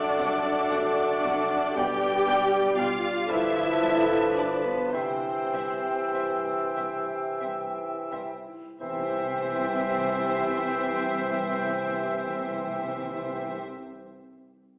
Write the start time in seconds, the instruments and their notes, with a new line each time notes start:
Already playing: harp C3 C4 D4 F#4 C5 D5, french horn section F#3 A4, bassoon A3, viola section D4, violin section D5, clarinet D5, cor anglais D5, flute section F#5
0.18 double bass section C2, cello section C3, violin section D5 F#5, harp F#5
0.44 harp D5
0.69 double bass section C2, cello section C3, harp F#4, violin section D5 F#5
0.98 harp D4
1.23 double bass section C2, cello section C3, harp C4, violin section D5 F#5
1.51 harp D4
1.74 double bass section B1, cello section B2, harp B2, bassoon G3, french horn section G3 G4, viola section G4, violin section D5 G5, flute section G5
2.02 harp B3
2.26 double bass section B1, cello section B2, harp D4, violin section D5 G5
2.76 double bass section B1, cello section B2, viola section F4, harp D5, violin section D5 F5 G5
3.02 harp G4
3.26 double bass section G1, harp G2, cello section G2, french horn section F3 A4, bassoon F3, viola section E4, violin section B4 E5 A5, flute section A5
3.31 clarinet B4
3.54 harp D3
3.80 double bass section G1, cello section G2, harp D4, violin section B4 A5
4.08 harp A4
4.35 double bass section G1, cello section G2, viola section D4, harp B4, violin section B4 D5 A5
4.64 viola section B3, violin section B4, harp D5
4.92 double bass section C2, harp C3, cello section C3, bassoon E3, french horn section E3 G4, viola section C4, clarinet C5, violin section C5 E5, cor anglais E5, flute section G5
5.52 double bass section C2, cello section C3, harp E4, violin section C5 E5
6.13 double bass section C2, cello section C3, harp C5, violin section C5 E5
6.44 harp E5
6.75 double bass section C2, cello section C3, violin section C5 E5, harp G5
7.08 harp E5
7.41 double bass section C2, cello section C3, harp G4, violin section C5 E5
7.76 harp E4
8.11 double bass section C2, cello section C3, harp G3, violin section C5 E5
8.47 harp E4
8.80 double bass section C2, harp C3, cello section C3, timpani C3, bassoon E3, french horn section E3 G4, viola section C4, clarinet C5, violin section C5 E5, cor anglais E5, flute section G5
8.88 timpani C3, harp C4
8.96 timpani C3, harp E4
9.03 harp G4
9.10 timpani C3, harp C5
9.16 timpani C3, harp G5
9.28 timpani C3
9.36 timpani C3
9.43 timpani C3
9.50 timpani C3
9.57 timpani C3
9.65 timpani C3
9.73 timpani C3
9.80 timpani C3
9.88 timpani C3
9.96 timpani C3
10.03 timpani C3
10.19 timpani C3
10.26 timpani C3
10.34 timpani C3
10.41 timpani C3
10.49 timpani C3
10.63 timpani C3
10.71 timpani C3
10.78 timpani C3
10.85 timpani C3
10.93 timpani C3
11.01 timpani C3
11.09 timpani C3
11.16 timpani C3
11.31 timpani C3
11.38 timpani C3
11.45 timpani C3
11.53 timpani C3
11.60 timpani C3
11.68 timpani C3
11.76 timpani C3
11.83 timpani C3
11.90 timpani C3
11.97 timpani C3
12.05 timpani C3
12.13 timpani C3
12.20 timpani C3
12.27 timpani C3
12.35 timpani C3
12.43 timpani C3
12.50 timpani C3
12.58 timpani C3
12.65 timpani C3
12.71 timpani C3
12.79 timpani C3
12.86 timpani C3
12.94 timpani C3
13.01 timpani C3
13.09 timpani C3
13.16 timpani C3
13.23 timpani C3
13.31 timpani C3
13.40 timpani C3
13.47 timpani C3
13.54 timpani C3